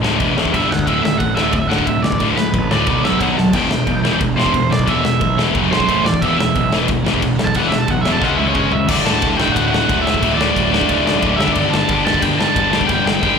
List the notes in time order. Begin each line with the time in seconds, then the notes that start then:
0.02 D1 D2 A2 D3, snare
0.19 E1 E2 B2 E3, kick, ride
0.36 E1 E2 B2 E3, snare
0.45 kick
0.53 G1 G2 D3 G3 E5, kick, ride
0.69 D2 G2 D3 F#5, snare
0.79 kick
0.86 D1 D2 A2 D3 E5, kick, ride
1.03 D1 D2 A2 E5, snare
1.19 A1 D2 A2 F#5, kick, ride
1.36 D1 D2 A2 D3 E5, snare
1.53 D1 D2 A2 E5, kick, ride
1.69 D1 D2 A2 D3 F#5, snare
1.78 kick
1.86 D1 D2 A2 E5, kick, ride
2.03 A1 D2 A2 D5, snare
2.12 kick
2.20 D1 D2 A2 D3, kick, ride
2.37 D1 D2 A2 B4, snare
2.54 A1 D2 A2, kick, ride
2.71 D1 D2 A2 D3 D5, snare
2.87 B1 B2 F#3 B3, kick, ride
3.05 B1 B2 F#3 B3 E5, snare
3.12 kick
3.19 B1 B2 F#3 B3 F#5, kick, ride
3.37 D1 B2 F#3 A5, snare
3.53 E1 E2 B2 E3 G5, kick, crash, ride
3.71 E1 E2 B2, snare
3.87 B1 E2 B2, kick, ride
4.04 E1 E2 B2 E3, snare
4.20 E1 E2 B2, kick, ride
4.36 E1 E2 B2 E3 C5, snare
4.46 kick
4.53 E1 E2 B2, kick, ride
4.70 B1 E2 B2 D5, snare
4.79 kick
4.86 E1 E2 B2 E3 E5, kick, ride
5.03 E1 E2 B2 E5, snare
5.20 B1 E2 B2, kick, ride
5.37 E1 E2 B2 E3, snare
5.55 F#1 F#2 C#3 F#3, kick, ride
5.71 B1 F#2 C#3 F#3 C5, snare
5.80 kick
5.88 A1 A2 E3 A3, kick, ride
6.05 D#1 A2 E3 D5, snare
6.14 kick
6.21 E1 E2 B2 E3 E5, kick, ride
6.37 E1 E2 B2 E5, snare
6.55 B1 E2 B2, kick, ride
6.71 E1 E2 B2 E3, snare
6.88 E1 E2 B2, kick, ride
7.06 E1 E2 B2 E3, snare
7.14 kick
7.22 E1 E2 B2, kick, ride
7.38 B1 E2 B2, snare
7.45 A5, kick
7.54 E1 E2 B2 E3 F#5, kick, ride
7.68 E5
7.72 E1 E2 B2, snare
7.78 A5
7.88 B1 E2 B2 F#5, kick, ride
8.01 E1 E5
8.05 E2 B2 E3, snare
8.12 A5
8.21 C#2 C#3 G#3 C#4 F#5, kick, snare
8.36 C#2 C#3 G#3 C#4 E5
8.47 C#5
8.55 C#2 C#3 G#3 C#4, kick, mid tom
8.72 C#2 C#3 G#3 E5, floor tom
8.88 D1 D2 A2 D3 A3 F#4 D5, kick, crash
9.05 D1 A5, snare
9.22 D1, kick, ride
9.38 D1 D2 A2 D3 A3 F#4 G5, snare
9.48 kick
9.52 F#5
9.56 D1, kick, ride
9.68 F#5
9.74 snare
9.89 D1 D2 A2 D3, kick, ride
10.02 E5
10.07 snare
10.14 kick
10.20 D1 D2 A2 D3 A3 F#4, kick, ride
10.35 D5
10.39 D1, snare
10.56 D1, kick, ride
10.72 D2 A2 D3 A3 F#4, snare
10.81 kick
10.89 D1, kick, ride
11.05 D1, snare
11.20 D1 D2 A2 D3, kick, ride
11.37 G1 G2 D3 G3 E5, snare
11.41 B3 D4 G4
11.48 kick
11.52 G1 D5, kick, ride
11.70 G1 A5, snare
11.88 G1 G2 D3 G3 B3 D4 G4, kick, ride
12.05 G1 A5, snare
12.14 kick
12.22 G1 G5, kick, ride
12.39 G2 D3 G3 A5, snare
12.56 G1, kick, ride
12.72 G2 D3 G3 B3 D4 G4, snare
12.81 kick
12.87 G1 G5, kick, ride
13.05 G1 G5, snare
13.21 G1 G2 D3 G3 B3 D4 G4 G5, kick, ride